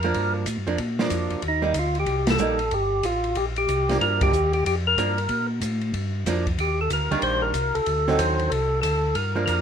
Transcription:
Already playing: tonewheel organ F2 A#4
0.03 hollow-body jazz guitar F3 A#3 D4, ride
0.14 tonewheel organ G2, kick, ride
0.46 tonewheel organ A2, kick, hi-hat pedal, ride
0.57 tonewheel organ G2
0.67 tonewheel organ F2, hollow-body jazz guitar F3 A#3 D4, ride
0.78 tonewheel organ A#2, kick, ride
0.99 hollow-body jazz guitar F3 A#3 D4, snare
1.10 tonewheel organ F2, kick, hi-hat pedal, ride
1.30 tonewheel organ F2, ride
1.42 tonewheel organ D#2, kick, ride
1.48 tonewheel organ D#4
1.62 hollow-body jazz guitar G3 A#3 D#4
1.74 tonewheel organ D2, kick, hi-hat pedal, ride
1.79 tonewheel organ F4
1.95 ride
1.99 tonewheel organ G4
2.06 tonewheel organ C2, kick, ride
2.27 tonewheel organ A4, snare, ride
2.38 tonewheel organ A#1, hollow-body jazz guitar G3 A#3 D#4, hi-hat pedal
2.59 ride
2.71 tonewheel organ G1 G4, kick, ride
3.03 tonewheel organ A1 F4, kick, hi-hat pedal, ride
3.24 ride
3.35 tonewheel organ A#1 G4, kick, ride
3.56 tonewheel organ G4, ride
3.68 tonewheel organ C2, kick, hi-hat pedal, ride
3.89 hollow-body jazz guitar F3 A#3 D4, snare, ride
4.01 tonewheel organ G2 A#4, kick, ride
4.21 tonewheel organ G4, kick, ride
4.32 tonewheel organ D#2, hi-hat pedal
4.53 tonewheel organ G4, ride
4.65 tonewheel organ F2 G4, kick, ride
4.87 tonewheel organ A#4
4.97 tonewheel organ G2, hollow-body jazz guitar F3 A#3 D4, kick, hi-hat pedal, ride
5.18 ride
5.29 tonewheel organ A#2, kick, ride
5.61 tonewheel organ A2, kick, hi-hat pedal, ride
5.81 ride
5.93 tonewheel organ G2, kick, ride
6.26 tonewheel organ F2, hollow-body jazz guitar F3 A#3 D4, kick, snare, hi-hat pedal, ride
6.47 kick, ride
6.58 tonewheel organ D#2 G4, kick, ride
6.81 tonewheel organ A4
6.90 tonewheel organ D2 A#4, kick, hi-hat pedal, ride
7.11 tonewheel organ D2, hollow-body jazz guitar D#3 G3 A#3 D4, ride
7.22 tonewheel organ A#1 C5, kick, ride
7.42 tonewheel organ A#4
7.54 tonewheel organ C2, kick, hi-hat pedal, ride
7.75 tonewheel organ C2 A4, ride
7.86 tonewheel organ D2, kick, ride
8.08 hollow-body jazz guitar D3 F#3 C4 D#4, snare
8.19 tonewheel organ D#2 C5, kick, hi-hat pedal, ride
8.39 ride
8.50 tonewheel organ C2 A4, kick, ride
8.82 tonewheel organ D2 A4, kick, hi-hat pedal, ride
9.15 tonewheel organ G2 A#4, kick, ride
9.36 hollow-body jazz guitar F3 A#3 D4
9.46 tonewheel organ F2 A#4, kick, hi-hat pedal, ride

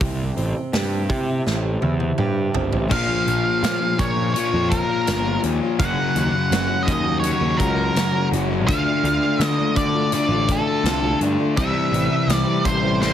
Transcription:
0.01 picked electric bass C2, steel-string acoustic guitar C3, kick, open hi-hat
0.37 picked electric bass A1, steel-string acoustic guitar C4, open hi-hat
0.73 picked electric bass G2, steel-string acoustic guitar G4, snare, open hi-hat
1.09 picked electric bass C3, steel-string acoustic guitar E4, kick, open hi-hat
1.46 picked electric bass A1, steel-string acoustic guitar C4, snare
1.82 picked electric bass E2, steel-string acoustic guitar E4, high tom
2.00 high tom
2.18 picked electric bass G2, steel-string acoustic guitar G4, mid tom
2.54 picked electric bass G1, steel-string acoustic guitar C4, floor tom
2.73 picked electric bass A1, floor tom
2.89 picked electric bass A#1, steel-string acoustic guitar A#2 F3 A#3 C#4 F4, lead electric guitar F5, kick, crash
3.25 picked electric bass A#1, steel-string acoustic guitar F3 A#3 C#4 F4, closed hi-hat
3.62 steel-string acoustic guitar A#2 F3 A#3 C#4 F4, picked electric bass A#2, snare, closed hi-hat
3.80 steel-string acoustic guitar A#3 C#4 F4
3.98 picked electric bass A#2, lead electric guitar C#5, muted steel-string acoustic guitar stroke, kick, closed hi-hat
4.16 steel-string acoustic guitar A#3 C#4 F4
4.34 overdriven electric guitar A#2 F3, lead electric guitar C#5, closed hi-hat
4.38 overdriven electric guitar A#3
4.53 picked electric bass F2, steel-string acoustic guitar A#3 C#4 F4
4.70 lead electric guitar A#4, kick, closed hi-hat
5.07 picked electric bass G1, steel-string acoustic guitar A#2 F3 A#3 C#4 F4, snare, closed hi-hat
5.24 steel-string acoustic guitar A#3 C#4 F4
5.42 picked electric bass D#2, steel-string acoustic guitar F3 A#3 C#4 F4, closed hi-hat
5.61 steel-string acoustic guitar A#3 C#4 F4
5.79 picked electric bass F#1, steel-string acoustic guitar F#2 C#3 F#3 A#3 C#4 F#4, lead electric guitar F#5, kick, closed hi-hat
6.15 picked electric bass D#2, steel-string acoustic guitar F#3 A#3 C#4 F#4, closed hi-hat
6.50 picked electric bass F#1, steel-string acoustic guitar F#2 C#3 F#3 A#3 C#4 F#4, snare, closed hi-hat
6.68 steel-string acoustic guitar F#3 A#3 C#4 F#4
6.83 lead electric guitar D#5
6.87 picked electric bass D#2, muted steel-string acoustic guitar stroke, kick, closed hi-hat
7.04 steel-string acoustic guitar F#3 A#3 C#4 F#4
7.20 overdriven electric guitar F#2, lead electric guitar C#5, closed hi-hat
7.25 overdriven electric guitar C#3 F#3
7.40 picked electric bass D#2, steel-string acoustic guitar F#3 A#3 C#4 F#4
7.57 picked electric bass C#2, lead electric guitar A#4, kick, closed hi-hat
7.94 steel-string acoustic guitar F#2 C#3 F#3 A#3 C#4 F#4, snare, closed hi-hat
8.13 steel-string acoustic guitar F#3 A#3 C#4 F#4
8.32 picked electric bass F#1, steel-string acoustic guitar F#3 A#3 C#4 F#4, closed hi-hat
8.50 steel-string acoustic guitar F#3 A#3 C#4 F#4
8.67 picked electric bass D2, steel-string acoustic guitar D3 A3 D4 F4, lead electric guitar F5, kick, closed hi-hat
9.03 picked electric bass D2, steel-string acoustic guitar D3 A3 D4 F4, closed hi-hat
9.39 picked electric bass D3, steel-string acoustic guitar D3 D4 F4, snare, closed hi-hat
9.45 lead electric guitar D#5
9.58 steel-string acoustic guitar A3 D4 F4
9.76 picked electric bass D3, lead electric guitar D5, muted steel-string acoustic guitar stroke, kick, closed hi-hat
9.94 steel-string acoustic guitar A3 D4 F4
10.12 overdriven electric guitar D3 A3 D4, lead electric guitar D5, closed hi-hat
10.28 picked electric bass A1, steel-string acoustic guitar D4 F4
10.33 steel-string acoustic guitar A3
10.49 lead electric guitar A4, kick, closed hi-hat
10.83 picked electric bass C2, steel-string acoustic guitar D3 A3 D4 F4, snare, closed hi-hat
11.02 steel-string acoustic guitar A3 D4 F4
11.20 picked electric bass G2, steel-string acoustic guitar D3 A3 D4 F4, closed hi-hat
11.38 steel-string acoustic guitar A3 D4 F4
11.56 picked electric bass C2, steel-string acoustic guitar C3 E3 G3 C4 E4, lead electric guitar E5, kick, closed hi-hat
11.92 picked electric bass A1, steel-string acoustic guitar E3 G3 C4, closed hi-hat
11.96 steel-string acoustic guitar E4
12.27 picked electric bass C2, steel-string acoustic guitar C3 E3 G3, snare, closed hi-hat
12.31 steel-string acoustic guitar C4 E4, lead electric guitar D5
12.48 steel-string acoustic guitar G3 C4 E4
12.65 picked electric bass A1, lead electric guitar C5, kick, closed hi-hat
12.83 steel-string acoustic guitar G3 C4 E4
13.01 overdriven electric guitar C3 G3 C4, lead electric guitar C5, snare

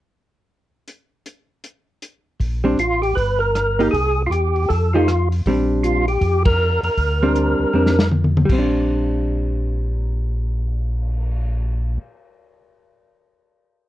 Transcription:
0.88 closed hi-hat
1.26 closed hi-hat
1.64 closed hi-hat
2.02 closed hi-hat
2.40 tonewheel organ A#1, kick, open hi-hat
2.64 hollow-body jazz guitar G3 C4 D4
2.78 tonewheel organ A1 F4, closed hi-hat
3.02 tonewheel organ G4, open hi-hat
3.15 tonewheel organ G1 B4, kick, open hi-hat
3.39 tonewheel organ A#4
3.55 cross-stick, closed hi-hat
3.79 hollow-body jazz guitar A#3 D#4 G4, open hi-hat
3.91 tonewheel organ C2 G#4, kick, open hi-hat
4.27 tonewheel organ E2 F4
4.31 tonewheel organ G4, closed hi-hat
4.56 open hi-hat
4.69 tonewheel organ F2 A4, kick, open hi-hat
4.93 hollow-body jazz guitar F3 A3 D#4 G4, tonewheel organ F4
5.08 cross-stick, closed hi-hat
5.32 open hi-hat
5.46 tonewheel organ A#1, hollow-body jazz guitar G3 C4 D4, kick, open hi-hat
5.83 tonewheel organ F4, closed hi-hat
6.08 tonewheel organ G4, open hi-hat
6.21 tonewheel organ F2, kick, open hi-hat
6.45 tonewheel organ A#4, kick, ride
6.83 tonewheel organ F2 A#4, open hi-hat
6.97 tonewheel organ D2, kick, open hi-hat
7.22 hollow-body jazz guitar G3 C4 D4
7.35 closed hi-hat
7.59 tonewheel organ D2
7.73 tonewheel organ F2, hollow-body jazz guitar G3 C4 D4
7.86 snare
7.99 snare
8.12 high tom
8.24 high tom
8.37 high tom
8.46 tonewheel organ A#1, hollow-body jazz guitar G3, kick
8.50 hollow-body jazz guitar C4, crash
8.58 hollow-body jazz guitar D4
8.74 cymbal swell

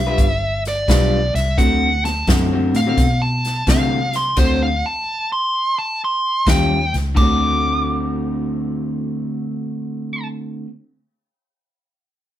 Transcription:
Already playing: fingered electric bass B1, lead electric guitar E5
0.07 clean electric guitar G3 D4 F4 B4
0.18 fingered electric bass G1, kick, closed hi-hat
0.65 lead electric guitar D5, snare, closed hi-hat
0.88 fingered electric bass B1, clean electric guitar G3 D4 F4 B4, kick, snare, closed hi-hat
1.34 fingered electric bass C2, lead electric guitar E5, snare, closed hi-hat
1.58 fingered electric bass D2, clean electric guitar D3 A3 C4 F#4, lead electric guitar F#5, kick, closed hi-hat
2.04 lead electric guitar A5, muted clean electric guitar stroke, snare, closed hi-hat
2.27 fingered electric bass F#2, clean electric guitar D3 A3 C4 F#4, kick, snare, closed hi-hat
2.52 clean electric guitar D3 A3 C4 F#4
2.74 fingered electric bass A2, lead electric guitar F5, snare, closed hi-hat
2.87 clean electric guitar D3 A3 C4 F#4
2.98 fingered electric bass B2, kick, snare, closed hi-hat
3.22 lead electric guitar A5
3.45 snare, closed hi-hat
3.67 fingered electric bass C3, clean electric guitar D3 A3 C4 F#4, lead electric guitar F5, kick, snare, closed hi-hat
4.13 lead electric guitar C6, snare, closed hi-hat
4.37 fingered electric bass D2, clean electric guitar D3 A3 C4 F#4, lead electric guitar C5, kick, snare, closed hi-hat, crash
4.63 lead electric guitar F5
4.86 lead electric guitar A5
5.32 lead electric guitar C6
5.78 lead electric guitar A5
6.04 lead electric guitar C6
6.46 fingered electric bass D#2, clean electric guitar D#3 G3 C#4 F4, lead electric guitar G5, kick, snare, closed hi-hat
6.94 fingered electric bass C#2, snare, closed hi-hat
7.15 fingered electric bass D2, clean electric guitar D3 A3 C4, lead electric guitar D6, kick, crash
7.19 clean electric guitar F#4

